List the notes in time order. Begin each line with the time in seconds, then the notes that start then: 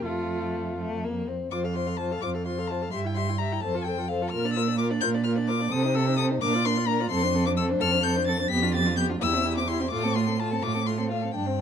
0.04 F2 A3 F4
0.79 A3
1.04 A#3
1.28 C4
1.51 F2 F4 C5 D6
1.64 A4 F5
1.74 F4 C5 C6
1.87 A4 F5
1.97 F4 C5 A5
2.11 A4 F5
2.21 F2 F4 C5 D6
2.35 A4 F5
2.45 F4 C5 C6
2.58 A4 F5
2.67 F4 C5 A5
2.82 A4 F5
2.91 G2 G4 E5 C6
3.05 E4 G5
3.15 G4 E5 C6
3.29 E4 G5
3.38 G4 E5 A#5
3.52 E4 G5
3.61 F2 A4 A5
3.65 C5
3.75 F4 A4
3.85 A4 C5 G5
3.98 F4 A4
4.08 A4 C5 F5
4.22 F4 A4
4.30 A#2 F4 A#4 F6
4.45 D4 D5
4.54 F4 A#4 E6
4.67 D4 D5
4.78 F4 A#4 D6
4.90 D4 D5
5.01 A#2 F4 A#4 G6
5.14 D4 D5
5.24 F4 A#4 F6
5.36 D4 D5
5.48 F4 A#4 D6
5.60 D4 D5
5.71 C3 C4 A4 D#6
5.83 D#4 C5
5.95 C4 A4 E6
6.06 D#4 C5
6.17 C4 A4 D#6
6.30 D#4 C5
6.41 A#2 D4 A#4 D6
6.54 F4 D5
6.65 D4 A#4 C6
6.77 F4 D5
6.87 D4 A#4 A#5
7.00 F4 D5
7.11 F2 C4 A4 C6
7.23 D4 C5
7.35 C4 A4
7.46 D4 C5 D6
7.57 C4 A4 E6
7.69 D4 C5
7.79 F2 C4 A4 F6
7.91 D4 C5
8.03 C4 A4 G6
8.16 D4 C5
8.28 C4 A4 A6
8.38 D4 C5
8.50 F2 B3 G4 B6
8.63 D4 F4
8.74 B3 G4 A6
8.86 D4 F4
8.97 B3 G4 G6
9.10 D4 F4
9.20 E2 E4 G4 E6
9.34 C4 E4
9.45 E4 G4
9.57 C4 E4 D6
9.68 E4 G4 C6
9.80 C4 E4
9.91 A2 A3 F4 D6
10.03 C4 A4
10.15 A3 F4 C6
10.27 C4 A4
10.39 A3 F4 A5
10.51 C4 A4
10.62 A2 A3 F4 D6
10.74 C4 A4
10.86 A3 F4 C6
10.98 C4 A4
11.09 A3 F4 F5
11.22 C4 A4
11.34 G2 D4 G5
11.46 C4